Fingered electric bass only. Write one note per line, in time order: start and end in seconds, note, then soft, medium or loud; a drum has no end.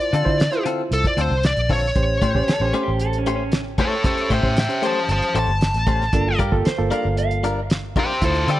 0.13 0.24 D3 medium
0.26 0.48 D3 loud
0.91 1.02 C2 medium
1.17 1.28 D2 medium
1.30 1.52 C2 medium
1.57 1.90 A#1 medium
1.95 2.18 A1 medium
2.22 2.33 A2 medium
2.34 2.46 A1 medium
2.47 muted fingered electric bass stroke soft
2.60 2.71 A1 medium
2.88 3.77 A1 medium
4.30 4.41 A2 medium
4.43 4.66 A2 loud
5.09 5.20 G1 medium
5.34 5.46 A1 medium
5.48 5.70 G1 medium
5.74 6.08 A1 medium
6.13 6.35 G1 loud
6.40 6.51 G2 medium
6.52 6.63 G1 loud
6.67 muted fingered electric bass stroke soft
6.79 6.90 G1 medium
7.05 7.95 G1 medium
8.22 8.44 D2 loud
8.47 8.59 D3 medium